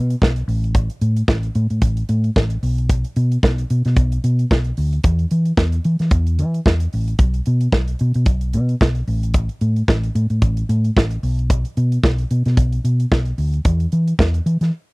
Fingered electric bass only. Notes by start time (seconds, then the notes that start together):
Already playing: B2
0.22 B1
0.48 A1
1.01 A2
1.28 A1
1.55 A2
1.70 A2
1.82 A1
2.09 A2
2.36 A1
2.63 B1
3.16 B2
3.43 B1
3.70 B2
3.86 B2
3.97 B1
4.24 B2
4.51 B1
4.78 D2
5.04 E2
5.31 E3
5.58 E2
5.85 E3
6.00 E3
6.12 E2
6.39 E3
6.66 E2
6.94 A1
7.19 B1
7.47 B2
7.73 B1
8.01 B2
8.15 B2
8.26 B1
8.54 B2
8.81 B1
9.08 A1
9.61 A2
9.88 A1
10.15 A2
10.30 A2
10.42 A1
10.69 A2
10.97 A1
11.23 B1
11.77 B2
12.03 B1
12.31 B2
12.46 B2
12.57 B1
12.84 B2
13.12 B1
13.38 D2
13.65 E2
13.93 E3
14.19 E2
14.46 E3
14.61 E3